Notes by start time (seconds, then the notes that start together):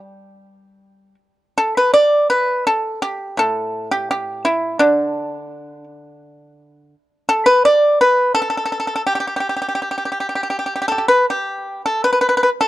Already playing: G3
1.58 A4
1.77 B4
1.94 D5
2.30 B4
2.67 A4
3.02 G4
3.37 A2 A4
3.91 G4
4.11 G4
4.45 E4
4.79 D3 D4
7.29 A4
7.46 B4
7.65 D5
8.01 B4
8.35 A4
8.42 A4
8.50 A4
8.57 A4
8.65 A4
8.72 A4
8.80 A4
8.87 A4
8.96 A4
9.07 G4
9.15 G4
9.20 G4
9.27 G4
9.36 G4
9.40 G4
9.49 G4
9.56 G4
9.62 G4
9.68 G4
9.75 G4
9.82 G4
9.91 G4
9.98 G4
10.05 G4
10.12 G4
10.20 G4
10.29 G4
10.35 G4
10.43 G4
10.50 G4
10.59 G4
10.66 G4
10.76 G4
10.82 G4
10.88 G4 A4
10.98 G4
11.08 B4
11.30 G4
11.86 A4
12.04 B4
12.13 B4
12.21 B4
12.29 B4
12.37 B4
12.43 B4
12.61 A4